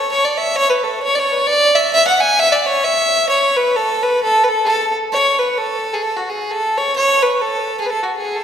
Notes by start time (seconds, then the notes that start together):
Already playing: C#5
0.12 C#5
0.25 D5
0.37 E5
0.56 C#5
0.69 B4
0.83 A4
1.03 C#5
1.15 D5
1.19 C#5
1.32 B4 C#5
1.47 D5
1.75 E5
1.94 E5
2.07 F#5
2.20 G#5
2.39 E5
2.52 D5
2.66 C#5
2.84 E5
3.29 C#5
3.56 B4
3.76 A4
4.03 B4
4.23 A4
4.44 B4
4.49 A4
4.65 G#4 A4
5.13 C#5
5.39 B4
5.58 A4
5.94 G#4
6.02 A4
6.17 F#4
6.30 G#4
6.51 A4
6.78 C#5
6.96 C#5
7.23 B4
7.42 A4
7.80 G#4
7.86 B4
7.90 A4
8.03 F#4
8.17 G#4
8.36 A4